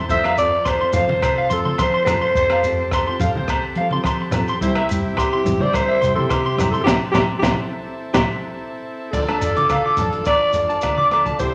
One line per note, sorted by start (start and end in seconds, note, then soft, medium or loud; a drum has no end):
0.00 4.57 C4 medium
0.00 4.57 A4 medium
0.08 0.85 F2 medium
0.08 0.26 F3 medium
0.08 0.27 C4 medium
0.08 2.33 F4 medium
0.08 0.27 F4 medium
0.08 0.27 A4 medium
0.08 0.19 C5 medium
0.08 0.36 E5 loud
0.08 kick medium
0.08 shekere medium
0.24 0.33 F5 medium
0.24 cross-stick medium
0.24 low agogo medium
0.37 0.55 F3 medium
0.37 0.55 C4 medium
0.37 0.55 F4 medium
0.37 0.56 A4 medium
0.37 0.70 D5 loud
0.37 closed hi-hat soft
0.37 shekere medium
0.65 0.95 C5 medium
0.65 0.75 C6 medium
0.65 kick medium
0.65 cross-stick medium
0.65 low agogo medium
0.65 shekere medium
0.79 0.94 C4 soft
0.79 0.94 F4 soft
0.79 0.93 A4 soft
0.79 0.90 C6 medium
0.93 1.07 F2 medium
0.93 1.12 F3 medium
0.93 1.12 C4 medium
0.93 1.12 F4 medium
0.93 1.54 C5 medium
0.93 1.04 F5 medium
0.93 closed hi-hat soft
0.93 low conga medium
0.93 shekere medium
0.97 1.13 A4 medium
1.08 1.46 C2 medium
1.08 1.19 C5 medium
1.08 high conga medium
1.22 1.32 C5 medium
1.22 kick medium
1.22 cross-stick medium
1.22 low agogo medium
1.22 shekere medium
1.38 1.46 F5 medium
1.50 1.76 F3 medium
1.50 1.65 F3 medium
1.50 1.65 C4 medium
1.50 1.65 F4 medium
1.50 1.84 A4 medium
1.50 1.60 C6 medium
1.50 muted nylon-string guitar stroke medium
1.50 closed hi-hat soft
1.50 shekere medium
1.65 1.82 C4 soft
1.65 1.82 F4 medium
1.65 1.81 A4 soft
1.65 1.74 C6 medium
1.65 high conga medium
1.78 2.30 F3 medium
1.78 2.04 C5 medium
1.78 1.89 C6 medium
1.78 kick medium
1.78 cross-stick medium
1.78 low agogo medium
1.78 shekere medium
1.94 2.03 C6 medium
2.05 2.24 F3 medium
2.05 2.25 F4 medium
2.05 3.15 C5 loud
2.05 muted nylon-string guitar stroke medium
2.05 cross-stick medium
2.05 closed hi-hat soft
2.05 low conga medium
2.05 low agogo medium
2.05 shekere loud
2.09 2.25 A4 medium
2.22 2.30 C6 medium
2.35 3.11 F2 medium
2.35 6.83 G4 medium
2.35 2.46 C5 medium
2.35 kick medium
2.35 shekere medium
2.50 2.60 F5 medium
2.50 cross-stick medium
2.50 low agogo medium
2.64 2.81 F3 medium
2.64 2.82 C4 medium
2.64 2.82 F4 medium
2.64 2.82 A4 medium
2.64 closed hi-hat soft
2.64 shekere medium
2.91 3.03 C6 medium
2.91 kick medium
2.91 cross-stick medium
2.91 low agogo medium
2.91 shekere medium
3.06 3.20 C4 soft
3.06 3.20 F4 medium
3.06 3.20 A4 medium
3.06 3.16 C6 medium
3.20 3.33 F2 medium
3.20 3.37 F3 medium
3.20 3.38 C4 medium
3.20 3.39 A4 medium
3.20 3.30 F5 medium
3.20 muted nylon-string guitar stroke medium
3.20 closed hi-hat soft
3.20 low conga medium
3.20 shekere medium
3.34 3.72 C2 medium
3.34 3.45 C5 medium
3.34 high conga medium
3.48 3.59 C5 medium
3.48 kick medium
3.48 cross-stick medium
3.48 low agogo medium
3.48 shekere medium
3.75 4.01 F3 medium
3.75 3.91 F3 medium
3.75 3.92 C4 medium
3.75 3.91 F4 medium
3.75 3.87 F5 medium
3.75 closed hi-hat soft
3.81 3.90 A4 medium
3.91 4.09 C4 soft
3.91 4.08 F4 medium
3.91 4.08 A4 medium
3.91 4.01 C6 medium
3.91 high conga medium
4.04 4.55 F3 medium
4.04 4.16 C6 medium
4.04 kick medium
4.04 cross-stick medium
4.04 low agogo medium
4.04 shekere medium
4.22 muted clean electric guitar stroke medium
4.31 4.51 F3 medium
4.31 4.51 C4 medium
4.31 cross-stick medium
4.31 closed hi-hat medium
4.31 low conga medium
4.31 low agogo medium
4.31 shekere medium
4.35 4.52 F4 medium
4.35 4.52 A4 medium
4.48 4.58 C6 medium
4.48 shekere soft
4.61 5.37 C2 medium
4.61 4.79 G3 medium
4.61 9.10 C4 medium
4.61 5.14 E4 medium
4.61 4.79 E4 medium
4.61 4.80 G4 medium
4.61 4.72 C5 medium
4.61 muted nylon-string guitar stroke medium
4.61 kick medium
4.61 shekere medium
4.65 9.11 E4 medium
4.75 4.86 E5 medium
4.75 cross-stick medium
4.75 low agogo medium
4.89 5.07 G3 medium
4.89 5.08 C4 medium
4.89 5.09 E4 medium
4.89 closed hi-hat medium
4.89 shekere loud
4.93 5.09 G4 medium
5.17 5.64 G4 medium
5.17 5.28 C6 medium
5.17 kick medium
5.17 cross-stick medium
5.17 low agogo medium
5.17 shekere medium
5.32 5.44 C4 soft
5.32 5.44 E4 soft
5.32 5.45 G4 medium
5.32 5.42 C6 medium
5.43 5.59 C2 medium
5.43 5.62 G3 soft
5.43 5.63 C4 medium
5.43 5.63 E4 medium
5.43 5.64 G4 medium
5.43 closed hi-hat soft
5.43 low conga medium
5.43 shekere medium
5.60 5.98 G2 medium
5.60 5.70 C5 medium
5.60 5.76 D5 loud
5.60 high conga medium
5.73 5.84 C5 medium
5.73 6.15 C5 loud
5.73 kick medium
5.73 cross-stick medium
5.73 low agogo medium
5.73 shekere medium
5.88 5.97 E5 medium
6.02 6.28 C3 medium
6.02 6.17 G3 medium
6.02 6.16 C4 medium
6.02 6.15 E4 medium
6.02 6.14 G4 medium
6.02 6.12 C6 medium
6.02 closed hi-hat medium
6.02 shekere medium
6.15 6.34 C4 soft
6.15 6.33 E4 medium
6.15 6.33 G4 soft
6.15 6.32 A4 medium
6.15 6.25 C6 medium
6.15 high conga medium
6.30 6.81 C3 medium
6.30 6.72 G4 loud
6.30 6.40 C6 loud
6.30 kick medium
6.30 cross-stick medium
6.30 low agogo medium
6.30 shekere medium
6.46 6.55 C6 medium
6.55 6.75 G3 medium
6.55 6.75 C4 medium
6.55 6.76 E4 medium
6.55 6.76 G4 medium
6.55 cross-stick medium
6.55 closed hi-hat soft
6.55 low conga medium
6.60 low agogo medium
6.60 shekere loud
6.71 6.83 A4 medium
6.71 6.83 C6 medium
6.71 shekere soft
6.84 6.98 C2 medium
6.84 6.95 C4 medium
6.84 6.95 E4 medium
6.84 6.92 G4 loud
6.84 6.96 G4 medium
6.84 9.10 A4 medium
6.84 6.97 E5 medium
6.84 6.96 G5 medium
6.84 6.96 C6 medium
6.84 kick medium
6.84 snare medium
6.84 low conga loud
6.84 low agogo loud
6.88 shekere loud
7.12 7.26 C2 medium
7.12 7.24 C4 loud
7.12 7.24 E4 medium
7.12 7.20 G4 loud
7.12 7.24 G4 medium
7.12 7.24 E5 medium
7.12 7.24 G5 medium
7.12 7.24 C6 medium
7.12 kick medium
7.12 snare medium
7.12 low conga loud
7.12 low agogo loud
7.12 shekere loud
7.39 7.52 C4 medium
7.39 7.51 E4 medium
7.39 7.47 G4 medium
7.39 7.52 G4 medium
7.39 7.53 E5 medium
7.39 7.53 G5 medium
7.39 low conga loud
7.43 7.55 C2 loud
7.43 7.53 C6 medium
7.43 kick medium
7.43 snare medium
7.43 low agogo medium
7.43 shekere loud
8.13 8.25 C2 medium
8.13 8.23 C4 loud
8.13 8.23 E4 loud
8.13 8.23 G4 loud
8.13 8.21 G4 medium
8.13 8.24 E5 medium
8.13 8.23 G5 medium
8.13 8.23 C6 medium
8.13 kick medium
8.13 snare medium
8.13 low conga loud
8.13 low agogo loud
8.13 shekere medium
9.12 9.40 D2 medium
9.12 9.28 F3 medium
9.12 9.28 A3 medium
9.12 11.37 D4 medium
9.12 9.28 D4 medium
9.12 11.37 F4 medium
9.12 10.22 A4 medium
9.12 11.38 A4 medium
9.12 9.26 A4 medium
9.12 9.23 D5 medium
9.12 kick medium
9.12 crash medium
9.12 shekere medium
9.27 9.45 A3 soft
9.27 9.45 D4 soft
9.27 9.44 A4 medium
9.27 9.38 A5 medium
9.27 cross-stick medium
9.27 low agogo medium
9.40 9.92 A1 medium
9.40 9.51 D5 medium
9.40 closed hi-hat medium
9.40 shekere medium
9.55 9.73 A3 soft
9.55 9.73 D4 soft
9.55 9.72 A4 soft
9.55 9.66 D6 medium
9.55 closed hi-hat medium
9.55 high conga medium
9.69 9.81 F5 medium
9.69 kick medium
9.69 cross-stick medium
9.69 closed hi-hat medium
9.69 high conga medium
9.69 low agogo medium
9.69 shekere medium
9.86 9.94 D6 medium
9.97 10.74 A1 medium
9.97 10.15 F3 medium
9.97 10.16 A3 medium
9.97 10.17 D4 medium
9.97 10.17 A4 medium
9.97 10.09 A5 medium
9.97 closed hi-hat soft
9.97 low conga medium
9.97 shekere loud
10.13 closed hi-hat soft
10.25 10.53 D5 loud
10.25 10.36 D5 medium
10.25 kick medium
10.25 cross-stick medium
10.25 closed hi-hat medium
10.25 low agogo medium
10.25 shekere medium
10.53 10.69 F3 medium
10.53 10.69 A3 medium
10.53 10.66 A4 medium
10.53 11.41 D5 medium
10.53 10.65 D5 medium
10.53 muted nylon-string guitar stroke medium
10.53 closed hi-hat medium
10.53 shekere medium
10.67 10.86 A3 soft
10.67 10.86 D4 soft
10.67 10.85 A4 medium
10.67 10.78 A5 medium
10.67 closed hi-hat soft
10.81 11.34 D2 medium
10.81 muted clean electric guitar stroke medium
10.81 kick medium
10.81 cross-stick medium
10.81 closed hi-hat soft
10.81 low agogo medium
10.81 shekere medium
10.97 11.07 D6 medium
10.97 high conga medium
11.10 11.28 F3 medium
11.10 11.29 A3 medium
11.10 11.29 D4 medium
11.10 11.30 A4 medium
11.10 11.22 D6 medium
11.10 cross-stick medium
11.10 closed hi-hat soft
11.10 low agogo medium
11.26 11.35 A5 medium
11.26 kick medium
11.26 closed hi-hat soft
11.26 high conga medium
11.26 shekere soft
11.38 11.54 C2 medium
11.38 11.54 C4 medium
11.38 11.54 E4 medium
11.38 11.53 E4 medium
11.38 11.54 G4 medium
11.38 11.52 G4 medium
11.38 11.49 C5 medium
11.38 11.54 C5 medium
11.38 muted nylon-string guitar stroke medium
11.38 kick medium
11.38 closed hi-hat soft
11.38 shekere medium